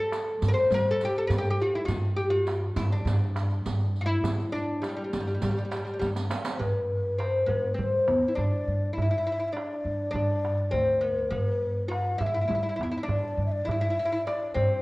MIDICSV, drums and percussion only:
0, 0, Header, 1, 3, 480
1, 0, Start_track
1, 0, Tempo, 589391
1, 1539, Time_signature, 4, 2, 24, 8
1, 12069, End_track
2, 0, Start_track
2, 0, Title_t, "Darbuka"
2, 100, Note_on_c, 9, 63, 82
2, 181, Note_off_c, 9, 63, 0
2, 345, Note_on_c, 9, 64, 89
2, 427, Note_off_c, 9, 64, 0
2, 464, Note_on_c, 9, 62, 27
2, 546, Note_off_c, 9, 62, 0
2, 584, Note_on_c, 9, 64, 75
2, 666, Note_off_c, 9, 64, 0
2, 954, Note_on_c, 9, 62, 29
2, 1035, Note_off_c, 9, 62, 0
2, 1056, Note_on_c, 9, 64, 84
2, 1138, Note_off_c, 9, 64, 0
2, 1307, Note_on_c, 9, 62, 28
2, 1388, Note_off_c, 9, 62, 0
2, 1539, Note_on_c, 9, 64, 81
2, 1621, Note_off_c, 9, 64, 0
2, 1654, Note_on_c, 9, 62, 29
2, 1736, Note_off_c, 9, 62, 0
2, 1780, Note_on_c, 9, 62, 28
2, 1862, Note_off_c, 9, 62, 0
2, 2017, Note_on_c, 9, 63, 72
2, 2099, Note_off_c, 9, 63, 0
2, 2250, Note_on_c, 9, 64, 90
2, 2331, Note_off_c, 9, 64, 0
2, 2378, Note_on_c, 9, 62, 25
2, 2460, Note_off_c, 9, 62, 0
2, 2499, Note_on_c, 9, 64, 92
2, 2581, Note_off_c, 9, 64, 0
2, 2736, Note_on_c, 9, 63, 74
2, 2818, Note_off_c, 9, 63, 0
2, 2862, Note_on_c, 9, 62, 25
2, 2943, Note_off_c, 9, 62, 0
2, 2984, Note_on_c, 9, 64, 87
2, 3066, Note_off_c, 9, 64, 0
2, 3220, Note_on_c, 9, 62, 30
2, 3302, Note_off_c, 9, 62, 0
2, 3450, Note_on_c, 9, 64, 96
2, 3532, Note_off_c, 9, 64, 0
2, 3574, Note_on_c, 9, 62, 32
2, 3655, Note_off_c, 9, 62, 0
2, 3702, Note_on_c, 9, 62, 28
2, 3783, Note_off_c, 9, 62, 0
2, 3935, Note_on_c, 9, 63, 68
2, 4016, Note_off_c, 9, 63, 0
2, 4300, Note_on_c, 9, 62, 26
2, 4381, Note_off_c, 9, 62, 0
2, 4418, Note_on_c, 9, 64, 88
2, 4499, Note_off_c, 9, 64, 0
2, 4544, Note_on_c, 9, 62, 26
2, 4625, Note_off_c, 9, 62, 0
2, 4657, Note_on_c, 9, 63, 70
2, 4738, Note_off_c, 9, 63, 0
2, 4899, Note_on_c, 9, 63, 60
2, 4981, Note_off_c, 9, 63, 0
2, 5018, Note_on_c, 9, 62, 63
2, 5100, Note_off_c, 9, 62, 0
2, 5137, Note_on_c, 9, 63, 84
2, 5219, Note_off_c, 9, 63, 0
2, 5255, Note_on_c, 9, 62, 96
2, 5336, Note_off_c, 9, 62, 0
2, 5379, Note_on_c, 9, 64, 81
2, 5460, Note_off_c, 9, 64, 0
2, 5627, Note_on_c, 9, 62, 26
2, 5708, Note_off_c, 9, 62, 0
2, 5864, Note_on_c, 9, 63, 64
2, 5945, Note_off_c, 9, 63, 0
2, 6094, Note_on_c, 9, 64, 74
2, 6175, Note_off_c, 9, 64, 0
2, 6343, Note_on_c, 9, 64, 75
2, 6424, Note_off_c, 9, 64, 0
2, 6462, Note_on_c, 9, 62, 27
2, 6543, Note_off_c, 9, 62, 0
2, 6579, Note_on_c, 9, 63, 67
2, 6660, Note_off_c, 9, 63, 0
2, 6713, Note_on_c, 9, 62, 27
2, 6794, Note_off_c, 9, 62, 0
2, 6826, Note_on_c, 9, 64, 77
2, 6908, Note_off_c, 9, 64, 0
2, 6955, Note_on_c, 9, 62, 26
2, 7037, Note_off_c, 9, 62, 0
2, 7312, Note_on_c, 9, 64, 77
2, 7394, Note_off_c, 9, 64, 0
2, 7558, Note_on_c, 9, 62, 26
2, 7639, Note_off_c, 9, 62, 0
2, 7789, Note_on_c, 9, 63, 67
2, 7871, Note_off_c, 9, 63, 0
2, 8268, Note_on_c, 9, 64, 78
2, 8349, Note_off_c, 9, 64, 0
2, 8392, Note_on_c, 9, 62, 22
2, 8474, Note_off_c, 9, 62, 0
2, 8508, Note_on_c, 9, 63, 63
2, 8589, Note_off_c, 9, 63, 0
2, 8622, Note_on_c, 9, 62, 21
2, 8704, Note_off_c, 9, 62, 0
2, 8746, Note_on_c, 9, 64, 76
2, 8827, Note_off_c, 9, 64, 0
2, 8866, Note_on_c, 9, 62, 22
2, 8947, Note_off_c, 9, 62, 0
2, 9220, Note_on_c, 9, 64, 77
2, 9302, Note_off_c, 9, 64, 0
2, 9465, Note_on_c, 9, 62, 24
2, 9547, Note_off_c, 9, 62, 0
2, 9704, Note_on_c, 9, 63, 62
2, 9785, Note_off_c, 9, 63, 0
2, 9942, Note_on_c, 9, 64, 91
2, 10023, Note_off_c, 9, 64, 0
2, 10183, Note_on_c, 9, 64, 83
2, 10265, Note_off_c, 9, 64, 0
2, 10319, Note_on_c, 9, 62, 21
2, 10400, Note_off_c, 9, 62, 0
2, 10432, Note_on_c, 9, 63, 63
2, 10514, Note_off_c, 9, 63, 0
2, 10541, Note_on_c, 9, 62, 22
2, 10623, Note_off_c, 9, 62, 0
2, 10657, Note_on_c, 9, 64, 84
2, 10739, Note_off_c, 9, 64, 0
2, 10788, Note_on_c, 9, 62, 23
2, 10870, Note_off_c, 9, 62, 0
2, 11147, Note_on_c, 9, 64, 88
2, 11228, Note_off_c, 9, 64, 0
2, 11283, Note_on_c, 9, 62, 25
2, 11364, Note_off_c, 9, 62, 0
2, 11391, Note_on_c, 9, 62, 26
2, 11473, Note_off_c, 9, 62, 0
2, 11626, Note_on_c, 9, 63, 66
2, 11707, Note_off_c, 9, 63, 0
2, 11862, Note_on_c, 9, 64, 91
2, 11943, Note_off_c, 9, 64, 0
2, 11993, Note_on_c, 9, 62, 24
2, 12069, Note_off_c, 9, 62, 0
2, 12069, End_track
3, 0, Start_track
3, 0, Title_t, "Riq"
3, 104, Note_on_c, 9, 54, 54
3, 185, Note_off_c, 9, 54, 0
3, 342, Note_on_c, 9, 54, 61
3, 423, Note_off_c, 9, 54, 0
3, 464, Note_on_c, 9, 54, 21
3, 546, Note_off_c, 9, 54, 0
3, 582, Note_on_c, 9, 54, 62
3, 663, Note_off_c, 9, 54, 0
3, 820, Note_on_c, 9, 54, 53
3, 901, Note_off_c, 9, 54, 0
3, 941, Note_on_c, 9, 54, 18
3, 1022, Note_off_c, 9, 54, 0
3, 1062, Note_on_c, 9, 54, 63
3, 1143, Note_off_c, 9, 54, 0
3, 1177, Note_on_c, 9, 54, 19
3, 1258, Note_off_c, 9, 54, 0
3, 1303, Note_on_c, 9, 54, 19
3, 1385, Note_off_c, 9, 54, 0
3, 1534, Note_on_c, 9, 54, 65
3, 1615, Note_off_c, 9, 54, 0
3, 1773, Note_on_c, 9, 54, 17
3, 1854, Note_off_c, 9, 54, 0
3, 2011, Note_on_c, 9, 54, 46
3, 2092, Note_off_c, 9, 54, 0
3, 2250, Note_on_c, 9, 54, 70
3, 2331, Note_off_c, 9, 54, 0
3, 2379, Note_on_c, 9, 54, 20
3, 2460, Note_off_c, 9, 54, 0
3, 2502, Note_on_c, 9, 54, 69
3, 2584, Note_off_c, 9, 54, 0
3, 2741, Note_on_c, 9, 54, 50
3, 2822, Note_off_c, 9, 54, 0
3, 2852, Note_on_c, 9, 54, 17
3, 2933, Note_off_c, 9, 54, 0
3, 2980, Note_on_c, 9, 54, 65
3, 3062, Note_off_c, 9, 54, 0
3, 3101, Note_on_c, 9, 54, 16
3, 3182, Note_off_c, 9, 54, 0
3, 3225, Note_on_c, 9, 54, 18
3, 3307, Note_off_c, 9, 54, 0
3, 3459, Note_on_c, 9, 54, 69
3, 3540, Note_off_c, 9, 54, 0
3, 3582, Note_on_c, 9, 54, 16
3, 3663, Note_off_c, 9, 54, 0
3, 3703, Note_on_c, 9, 54, 17
3, 3784, Note_off_c, 9, 54, 0
3, 3941, Note_on_c, 9, 54, 47
3, 4022, Note_off_c, 9, 54, 0
3, 4180, Note_on_c, 9, 54, 65
3, 4261, Note_off_c, 9, 54, 0
3, 4301, Note_on_c, 9, 54, 21
3, 4383, Note_off_c, 9, 54, 0
3, 4413, Note_on_c, 9, 54, 68
3, 4495, Note_off_c, 9, 54, 0
3, 4537, Note_on_c, 9, 54, 20
3, 4618, Note_off_c, 9, 54, 0
3, 4658, Note_on_c, 9, 54, 53
3, 4740, Note_off_c, 9, 54, 0
3, 4780, Note_on_c, 9, 54, 18
3, 4861, Note_off_c, 9, 54, 0
3, 4900, Note_on_c, 9, 54, 57
3, 4981, Note_off_c, 9, 54, 0
3, 5022, Note_on_c, 9, 54, 67
3, 5103, Note_off_c, 9, 54, 0
3, 5140, Note_on_c, 9, 54, 83
3, 5222, Note_off_c, 9, 54, 0
3, 5253, Note_on_c, 9, 54, 87
3, 5334, Note_off_c, 9, 54, 0
3, 12069, End_track
0, 0, End_of_file